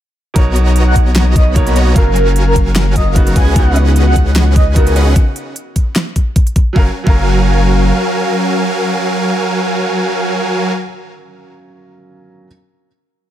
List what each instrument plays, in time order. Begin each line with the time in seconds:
0.34 sub bass B1, grand piano B2 D#4 A#4 C#5, supersaw synth B3 F#4 C#5 D#5 A#5, analog synth pad D#4, kick, closed hi-hat
0.56 closed hi-hat
0.76 closed hi-hat
0.87 soft synth lead F#5
0.96 kick, closed hi-hat
1.16 snare, closed hi-hat
1.36 supersaw synth B3 F#4 C#5 B5, soft synth lead D#5, kick, closed hi-hat
1.55 grand piano B2 A#3 D#4 C#5, soft synth lead A#4, kick, closed hi-hat
1.67 soft synth lead A#4, closed hi-hat
1.76 supersaw synth B3 F#4 C#5 D#5 A#5, closed hi-hat
1.94 sub bass F#1, grand piano F#3 C#4 A#4 F5, analog synth pad F#3 C#4 A#4 F5, supersaw synth F#3 F#4 A#4 F5, soft synth lead A#4, kick, closed hi-hat
2.16 soft synth lead A#4, closed hi-hat
2.36 closed hi-hat
2.47 soft synth lead A#4
2.56 kick, closed hi-hat
2.76 snare, closed hi-hat
2.96 supersaw synth F#3 F#4 A#4 F5 A#5, soft synth lead D#5, kick, closed hi-hat
3.15 grand piano C#3 B3 D#4 F#4, kick, closed hi-hat
3.27 closed hi-hat
3.36 sub bass C#2, analog synth pad C#3 B3 D#4 F#4, supersaw synth C#4 G#4 B4 D#5 F#5, soft synth lead G#5, kick, closed hi-hat
3.54 grand piano C#3 B3 D#4, supersaw synth C#4 G#4 B4 D#5 F#5, kick, closed hi-hat
3.58 grand piano F#4
3.76 closed hi-hat
3.96 closed hi-hat
4.07 soft synth lead F#5
4.16 kick, closed hi-hat
4.36 snare, closed hi-hat
4.56 supersaw synth C#4 G#4 B4 D#5 G#5, soft synth lead D#5, kick, closed hi-hat
4.75 grand piano C#3 B3 D#4 F#4, soft synth lead A#4, kick, closed hi-hat
4.87 soft synth lead A#4, closed hi-hat
4.96 supersaw synth C#4 G#4 B4 D#5 F#5, closed hi-hat
5.16 kick, closed hi-hat
5.36 closed hi-hat
5.56 closed hi-hat
5.76 kick, closed hi-hat
5.96 snare, closed hi-hat
6.16 kick, closed hi-hat
6.36 kick, closed hi-hat
6.47 closed hi-hat
6.56 kick, closed hi-hat
6.73 sub bass F#1, grand piano F#3 C#4 F5, analog synth pad F#3 C#4 A#4 F5, supersaw synth F#3 F#4 A#4 F5 G#5, kick
6.79 grand piano A#4
7.04 sub bass F#1, grand piano F#3 C#4 F5, supersaw synth F#3 F#4 A#4 F5 G#5, kick
7.10 grand piano A#4